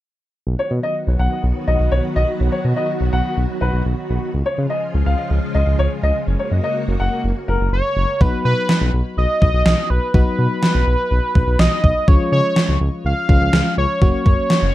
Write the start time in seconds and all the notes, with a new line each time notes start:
0.47 B1 D#3 F#3 B3 F#4
0.59 C#5
0.71 B2
0.83 D#5
1.07 B1
1.19 B1 F#5
1.44 B1
1.68 B1 D#5
1.80 B1
1.92 B1 C#5
2.16 B1 D#5
2.40 B1
2.52 C#5
2.65 B2
2.76 D#5
3.01 B1
3.13 B1 F#5
3.37 B1
3.61 B1 B4
3.73 B1
3.85 B1
4.10 B1
4.34 C#2 C#3 F3 G#3 F4
4.46 C#5
4.58 C#3
4.70 D#5
4.94 C#2
5.06 C#2 F5
5.31 C#2
5.55 C#2 D#5
5.67 C#2
5.79 C#2 C#5
6.03 C#2 D#5
6.27 F#1 A#3 F#4
6.39 C#5
6.51 F#2
6.64 D#5
6.88 F#1
7.00 F#1 F#5
7.24 F#1
7.48 F#1 A#4
7.60 F#1
7.72 F#1 C#5
7.97 F#1
8.21 B1 F#3 B3 D#4 F#4 B4, kick
8.45 B2 B4
8.69 snare
8.81 B1
8.93 B1
9.17 B1 D#5
9.42 B1, kick
9.54 B1
9.66 B1, snare
9.90 B1 B4
10.14 B1 F#3 B3 D#4 F#4 B4, kick
10.39 B2
10.63 snare
10.75 B1
10.87 B1
11.11 B1
11.35 B1, kick
11.47 B1
11.59 B1 D#5, snare
11.84 B1, kick
12.08 C#2 F3 G#3 C#4 F4 C#5, kick
12.32 C#3 C#5
12.56 snare
12.69 C#2
12.81 C#2
13.05 C#2 F5
13.29 C#2 F3 G#3 C#4 F4, kick
13.41 C#2
13.53 C#2, snare
13.77 C#2 C#5
14.02 F#1 F#3 A#3 C#4 F#4 C#5, kick
14.26 F#2, kick
14.50 snare
14.62 F#1